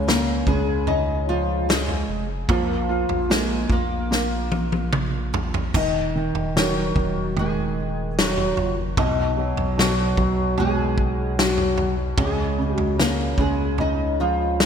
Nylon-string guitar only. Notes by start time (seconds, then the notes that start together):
0.08 A#3 A#4
0.48 G#3 G#4
0.88 D#4 D#5
1.29 F3 F4
1.69 G#3 G#4
2.49 F3 F4
3.30 G#3 G#4
3.72 A#3 A#4
5.76 D#4 D#5
6.58 F#3 F#4
7.39 G#3 G#4
8.19 F#3 F#4
8.59 F4
8.99 D#4 D#5
9.79 F#3 F#4
10.59 G#3 G#4
11.39 F#3 F#4
12.19 G#3 G#4
12.74 F#4
13.00 A#3 A#4
13.39 G#3 G#4
13.80 D#4 D#5
14.20 F3 F4
14.61 G#3 G#4